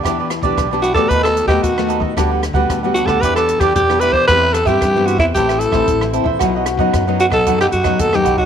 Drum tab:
HH |x-xxx-x-xxx-x-x-|x-x-x-x-xxxxx-x-|x-xxx-x-xxx-x-x-|x-x-x-x-xxxxx-x-|
SD |r-r-r--r-r-r-r--|r-r-r--r-r-r-r--|r-r-r--r-r-r-r--|r-r-r--r-r-r-r--|
BD |o--oo--oo--oo--o|o--oo--oo--oo--o|o--oo--oo--oo--o|o--oo--oo--oo--o|